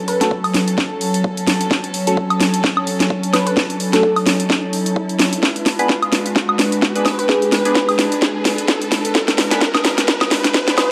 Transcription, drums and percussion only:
0.08 open hi-hat
0.21 snare, closed hi-hat
0.31 kick
0.44 open hi-hat, high woodblock
0.54 snare, open hi-hat
0.68 closed hi-hat
0.78 kick, snare
1.01 open hi-hat
1.14 closed hi-hat
1.24 kick
1.37 closed hi-hat
1.47 snare, open hi-hat
1.61 closed hi-hat
1.71 kick, snare
1.84 closed hi-hat
1.94 open hi-hat
2.07 closed hi-hat
2.17 kick
2.30 closed hi-hat, high woodblock
2.40 snare, open hi-hat
2.54 closed hi-hat
2.64 kick, snare
2.77 high woodblock
2.87 open hi-hat
3.00 snare, closed hi-hat
3.10 kick
3.23 closed hi-hat
3.33 snare, open hi-hat, high woodblock
3.47 closed hi-hat
3.57 kick, snare
3.70 closed hi-hat
3.80 open hi-hat
3.93 snare, closed hi-hat
4.03 kick
4.16 open hi-hat, high woodblock
4.27 snare, open hi-hat
4.40 closed hi-hat
4.50 kick, snare
4.73 open hi-hat
4.86 closed hi-hat
4.96 kick
5.09 closed hi-hat
5.19 snare, open hi-hat
5.33 closed hi-hat
5.43 kick, snare
5.56 closed hi-hat
5.66 snare, open hi-hat
5.79 closed hi-hat
5.89 kick, snare
6.03 closed hi-hat, high woodblock
6.13 snare, open hi-hat
6.26 closed hi-hat
6.36 kick, snare
6.49 high woodblock
6.59 snare, open hi-hat
6.72 closed hi-hat
6.82 kick, snare
6.96 closed hi-hat
7.06 snare, open hi-hat, high woodblock
7.19 closed hi-hat
7.29 kick, snare
7.42 closed hi-hat
7.52 snare, open hi-hat
7.65 closed hi-hat
7.75 kick, snare
7.89 open hi-hat, high woodblock
7.99 snare, open hi-hat
8.12 closed hi-hat
8.22 kick, snare
8.45 snare, open hi-hat
8.58 closed hi-hat
8.68 kick, snare
8.82 closed hi-hat
8.92 snare, open hi-hat
9.05 closed hi-hat
9.15 kick, snare
9.28 snare, closed hi-hat
9.38 snare, open hi-hat
9.51 snare, closed hi-hat
9.61 kick, snare
9.75 snare, closed hi-hat, high woodblock
9.85 snare, open hi-hat
9.98 snare, closed hi-hat
10.08 kick, snare
10.21 snare, high woodblock
10.31 snare, open hi-hat
10.44 snare, closed hi-hat
10.54 kick, snare
10.68 snare, closed hi-hat
10.78 snare, open hi-hat, high woodblock

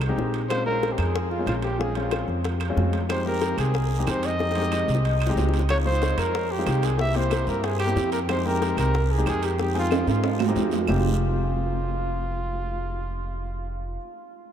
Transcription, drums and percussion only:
0.01 high bongo, high timbale, claves
0.19 high bongo, low bongo
0.34 high bongo, high timbale
0.50 high bongo, high timbale, claves
0.83 high bongo, high timbale
0.98 high bongo, high timbale, claves
1.16 high bongo
1.31 high bongo
1.47 high bongo, low bongo, high timbale, claves
1.62 high bongo, high timbale
1.81 high bongo
1.95 high timbale
2.11 high bongo, high timbale, claves
2.29 high bongo
2.44 high bongo, high timbale
2.60 high bongo, high timbale, claves
2.77 high bongo, low bongo, low timbale
2.93 high bongo, high timbale
3.09 high bongo, high timbale, long guiro, claves
3.42 high bongo, high timbale, short guiro
3.58 high bongo, high timbale, short guiro, claves
3.74 high bongo, long guiro
3.91 high bongo
4.07 high bongo, low bongo, high timbale, short guiro, claves
4.23 high bongo, high timbale, short guiro
4.39 high bongo, long guiro
4.51 high bongo
4.55 high timbale
4.62 high bongo
4.72 low bongo, high timbale, short guiro, claves
4.88 short guiro
4.95 low bongo
5.05 high timbale, long guiro
5.21 high timbale, claves
5.27 low bongo
5.37 low bongo, low timbale, short guiro
5.49 low bongo
5.54 high timbale, short guiro
5.59 low bongo
5.69 high bongo, high timbale, long guiro, claves
6.02 high bongo, high timbale, short guiro
6.18 high bongo, high timbale, short guiro, claves
6.35 high bongo, long guiro
6.51 high bongo
6.66 high bongo, low bongo, high timbale, short guiro, claves
6.83 high bongo, high timbale, short guiro
6.99 high bongo, long guiro
7.15 high timbale
7.31 high bongo, high timbale, short guiro, claves
7.47 high bongo, short guiro
7.64 high bongo, high timbale, long guiro
7.79 high bongo, high timbale, claves
7.96 high bongo, low bongo, short guiro
8.12 high bongo, high timbale, short guiro
8.29 high bongo, high timbale, long guiro, claves
8.62 high bongo, high timbale, short guiro
8.77 high bongo, high timbale, short guiro, claves
8.94 high bongo, long guiro
9.11 high bongo
9.26 high bongo, low bongo, high timbale, short guiro, claves
9.42 high bongo, high timbale, short guiro
9.58 high bongo, long guiro
9.76 high timbale
9.91 high bongo, high timbale, short guiro, claves
10.08 high bongo, high timbale, short guiro
10.24 high bongo, high timbale, long guiro
10.39 high bongo, low timbale, claves
10.56 high bongo, low bongo, low timbale, short guiro
10.71 high bongo, low timbale, short guiro
10.87 low bongo, low timbale, long guiro, claves

